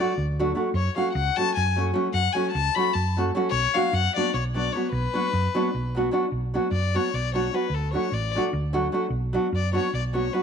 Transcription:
Already playing: D5
0.00 F#3 A3 D4 F#4
0.18 D2
0.39 F#3 A3 D4 F#4
0.55 F#3 A3 D4 F#4
0.74 F#2 C#5
0.96 F#3 A3 C#4 F#4 F5
1.13 C#2 F#5
1.36 F#3 A3 C#4 F#4 A5
1.55 F#2 G#5
1.76 F#3 A3 C#4 F#4
1.94 F#3 A3 C#4 F#4
2.14 F#2 F#5
2.33 F#3 A3 C#4 F#4 G#5
2.51 C#2 A5
2.75 F#3 A3 C#4 F#4 B5
2.93 F#2 A5
3.17 F#3 A3 C#4 F#4
3.35 F#3 A3 C#4 F#4
3.50 B1 C#5
3.74 F#3 B3 D4 F#4 F5
3.93 F#2 F#5
4.16 F#3 B3 D4 F#4 D5
4.34 B1 C#5
4.54 F#3 B3 D4 F#4 D5
4.72 F#3 B3 D4 C#5
4.77 F#4
4.92 B1 B4
5.14 F#3 B3 D4 F#4
5.33 F#2
5.55 F#3 B3 D4 F#4
5.75 B1
5.95 F#3 B3 D4 F#4
6.11 F#3 B3 D4 F#4
6.32 B1
6.54 F#3 B3 D4 F#4
6.71 F#2 D5
6.95 F#3 B3 D4 F#4 C#5
7.14 B1 D5
7.34 F#3 B3 D4 F#4 C#5
7.53 F#3 B3 D4 F#4 B4
7.70 D2
7.74 A4
7.93 F#3 A3 D4 F#4 C#5
8.12 A1 D5
8.35 F#3 A3 D4 F#4
8.53 D2
8.73 F#3 A3 D4 F#4
8.92 F#3 A3 D4 F#4
9.10 B1
9.33 F#3 B3 D4 F#4
9.52 F#2 D5
9.73 F#3 B3 D4 F#4 C#5
9.93 B1 D5
10.13 F#3 B3 D4 F#4 C#5
10.33 F#3 B3 D4 F#4 B4

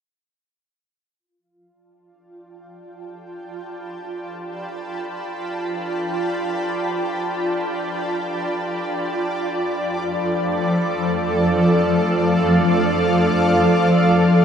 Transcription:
1.19 F4
1.63 D5 A5
1.74 G5
2.84 B5
9.02 F3
9.35 A4
10.08 F5

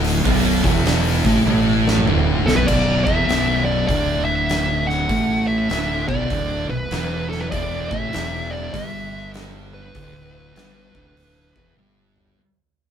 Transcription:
Already playing: D1 D2 D3
0.04 snare, open hi-hat
0.25 B0 B1 B2, kick, open hi-hat
0.64 E1 E2 E3, kick, open hi-hat
0.85 snare, open hi-hat
1.25 A1 A2 A3, kick, snare, open hi-hat
1.46 A1 A2 A3, high tom
1.88 snare
1.98 mid tom
2.07 D1 D2 D3, mid tom
2.46 B0 B1 B2 A4, snare
2.56 B4, floor tom
2.67 B0 B1 B2 D5, kick, crash
3.05 E1 E2 E3 E5, kick
3.27 B0 B1 B2, snare, open hi-hat
3.65 D5
3.87 D1 D2 D3 D5, kick, open hi-hat
4.25 E5
4.49 snare, open hi-hat
4.87 F#5, snare
5.09 A1 A2 A3, kick, open hi-hat
5.47 E5
5.70 D1 D2 D3, snare, open hi-hat
6.08 B0 B1 B2 D5, kick
6.30 D1 D2 D3, kick, open hi-hat
6.70 B0 B1 B4
6.91 E1 E2 E3, snare, open hi-hat
7.29 A4, snare
7.40 B4
7.51 E1 E2 E3 D5, kick, open hi-hat
7.89 A1 A2 A3 E5, kick
8.13 E1 E2 E3, snare, open hi-hat
8.51 D5
8.73 G1 G2 G3 E5, kick, open hi-hat
9.34 snare, open hi-hat
9.74 B4
9.95 D1 D2 D3, kick, open hi-hat
10.56 G1 G2 G3, snare, open hi-hat
10.95 D1 D2 D3, kick
11.17 open hi-hat
11.55 E1 E2 E3, kick
11.77 G1 G2 G3, high tom
12.16 mid tom
12.27 floor tom

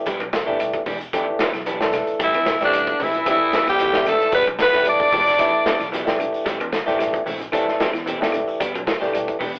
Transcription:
0.06 E1 E3 G3 B3 D4 G4, kick, closed hi-hat, shekere
0.20 B1, muted clean electric guitar stroke, closed hi-hat, high conga, claves
0.33 E3, muted clean electric guitar stroke, kick, snare, closed hi-hat, shekere
0.46 E1 E3 A3 B3 D4 G4, high conga, shekere
0.59 G3, closed hi-hat, claves, shekere
0.73 muted clean electric guitar stroke, kick, closed hi-hat
0.86 E1 E3 D4 G4, kick, open hi-hat, high conga, low conga, shekere
1.00 muted clean electric guitar stroke, closed hi-hat, shekere
1.13 D3 E3 A3 B3 D4 G4, kick, closed hi-hat, claves, shekere
1.27 muted clean electric guitar stroke
1.39 E3 B3 D4 G4, snare, closed hi-hat, high conga, shekere
1.53 B1 E3, muted clean electric guitar stroke, snare, closed hi-hat, claves, shekere
1.66 E3 B3 D4 G4 A5, closed hi-hat, high conga, shekere
1.80 E3 A3 D4 A4, muted clean electric guitar stroke, snare, closed hi-hat, high conga
1.93 D3, snare, closed hi-hat, low conga, claves, shekere
2.07 muted clean electric guitar stroke, muted fingered electric bass stroke, closed hi-hat, shekere
2.19 A1 E3 G3 A3 E4 G4, muted clean electric guitar stroke, kick, closed hi-hat, shekere
2.24 E3 E4
2.34 E2, muted clean electric guitar stroke, closed hi-hat, high conga, claves
2.46 E3, muted fingered electric bass stroke, muted clean electric guitar stroke, kick, snare, closed hi-hat, shekere
2.60 A1 E3 G3 A3 C4 D4 G4, snare, closed hi-hat, shekere
2.65 D3 D4
2.73 G3, closed hi-hat, claves, shekere
2.87 muted clean electric guitar stroke, kick, closed hi-hat
3.00 A1 E3 A3 C4 E4 G4, open hi-hat, high conga, low conga, shekere
3.13 muted clean electric guitar stroke, closed hi-hat, high conga, shekere
3.25 D3 E3 A3 C4 D4 G4, kick, closed hi-hat, low conga, claves, shekere
3.29 E4
3.40 muted clean electric guitar stroke
3.53 E3 A3 C4, muted clean electric guitar stroke, snare, closed hi-hat, high conga, shekere
3.67 E2 E3 G3 G4, muted clean electric guitar stroke, snare, closed hi-hat, claves, shekere
3.73 G4
3.79 E3 A3, muted clean electric guitar stroke, closed hi-hat, high conga, shekere
3.93 E3 A3 D4 E4, muted clean electric guitar stroke, snare
4.05 D3 A3 A4, snare, closed hi-hat, low conga, claves, shekere
4.12 A4
4.20 muted clean electric guitar stroke, muted fingered electric bass stroke, snare, shekere
4.32 E1 E3 G3 B3 D4 G4 B4, kick, closed hi-hat, shekere
4.36 B4
4.46 B1, muted clean electric guitar stroke, closed hi-hat, high conga, claves
4.59 E3 B3 B4, muted fingered electric bass stroke, muted clean electric guitar stroke, kick, snare, closed hi-hat, shekere
4.73 E1 E3 G3 A3 B3 D4 G4, snare, shekere
4.85 G3 D4 D5, closed hi-hat, claves, shekere
4.89 D5
5.00 muted clean electric guitar stroke, kick, closed hi-hat
5.12 E1 E3 B3 D4 G4, kick, open hi-hat, high conga, low conga, shekere
5.25 muted clean electric guitar stroke, snare, closed hi-hat, high conga, shekere
5.38 D3 E3 A3 B3 D4 E4 G4, muted clean electric guitar stroke, kick, closed hi-hat, claves, shekere
5.53 muted clean electric guitar stroke
5.65 E3 B3 D4 G4, snare, closed hi-hat, high conga, shekere
5.80 B1 E3, muted clean electric guitar stroke, snare, closed hi-hat, claves, shekere
5.92 E3 B3 D4 G4, snare, closed hi-hat, high conga, shekere
6.05 E3 A3 D4 G4, muted clean electric guitar stroke, snare, closed hi-hat, high conga
6.19 D3, closed hi-hat, low conga, claves, shekere
6.33 muted clean electric guitar stroke, muted fingered electric bass stroke, closed hi-hat, shekere
6.45 A1 E3 G3 A3 C4 G4, kick, snare, closed hi-hat, shekere
6.60 E2, muted clean electric guitar stroke, closed hi-hat, high conga, claves
6.72 E3, muted clean electric guitar stroke, muted fingered electric bass stroke, kick, snare, closed hi-hat, shekere
6.86 A1 E3 G3 A3 C4 D4 G4, snare, closed hi-hat, shekere
6.99 G3, snare, closed hi-hat, claves, shekere
7.13 muted clean electric guitar stroke, kick, closed hi-hat
7.26 A1 E3 A3 C4, open hi-hat, high conga, low conga, shekere
7.40 muted clean electric guitar stroke, closed hi-hat, high conga, shekere
7.52 D3 E3 A3 C4 D4 G4 A4, kick, closed hi-hat, claves, shekere
7.68 muted clean electric guitar stroke, snare
7.80 E3 A3 C4 G4, snare, closed hi-hat, high conga, shekere
7.93 E2 E3, muted clean electric guitar stroke, snare, closed hi-hat, claves, shekere
8.06 E3 A3 C4 G4, closed hi-hat, high conga, shekere
8.20 E3 A3 D4 G4, muted clean electric guitar stroke, snare, high conga
8.32 D3, closed hi-hat, low conga, claves, shekere
8.48 muted clean electric guitar stroke, muted fingered electric bass stroke, shekere
8.60 E1 G3 B3 D4 G4, kick, closed hi-hat, shekere
8.74 B1, muted clean electric guitar stroke, closed hi-hat, high conga, claves
8.86 E3, muted clean electric guitar stroke, muted fingered electric bass stroke, kick, snare, closed hi-hat, shekere
9.00 E1 E3 G3 A3 D4 G4, snare, shekere
9.13 G3, closed hi-hat, claves, shekere
9.27 muted clean electric guitar stroke, kick, closed hi-hat
9.39 E1 E3 B3 D4 G4, kick, open hi-hat, high conga, low conga, shekere
9.54 muted clean electric guitar stroke, closed hi-hat, shekere

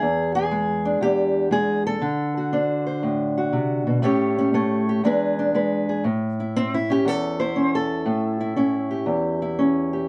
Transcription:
Already playing: G#4
0.02 E2
0.35 G#4
0.51 G#3
0.85 D4
1.01 E2 G4
1.51 G#3 G#4
1.87 A4
2.02 D3
2.37 F#4
2.53 D4 C5
2.87 C5
3.03 A2
3.38 F#4
3.53 C3
3.87 B2
4.02 A2 A3 C#4 G4 C#5
4.38 C#4
4.54 A3 C#5
4.89 G4
5.04 E2 G#3 D4 G#4 B4
5.39 D4
5.55 G#3 B4
5.89 G#4
6.04 A2
6.40 E4
6.56 C4
6.74 E4
6.90 C#4 G4
7.05 E2 A4
7.40 E4 C5
7.56 C#4
7.75 A4
8.06 A2
8.41 E4
8.56 C#4 E4
8.91 G4
9.06 E2
9.42 E4
9.59 C#4
9.93 G4

